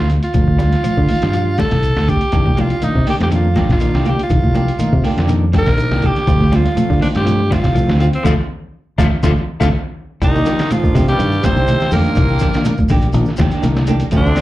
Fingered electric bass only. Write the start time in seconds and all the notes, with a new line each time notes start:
Already playing: D2
0.35 D2
0.84 muted fingered electric bass stroke
0.97 D3
1.23 G2
1.72 C2
1.96 D2
2.33 C2
2.82 muted fingered electric bass stroke
2.95 C3
3.19 F2
3.69 A#1
3.94 C2
4.30 C2
4.80 muted fingered electric bass stroke
4.93 C3
5.17 F2
5.67 A#1
5.91 C2
6.27 D2
6.77 muted fingered electric bass stroke
6.90 D3
7.15 G2
7.64 C2
7.88 D2
8.25 D2
8.98 D2
9.23 D2
9.61 D2
10.22 C2
10.95 C3
11.19 G2
11.56 C2
11.92 F2
12.17 C2
12.90 A#1
13.14 A#1
13.39 D#2
13.63 C2
14.12 D2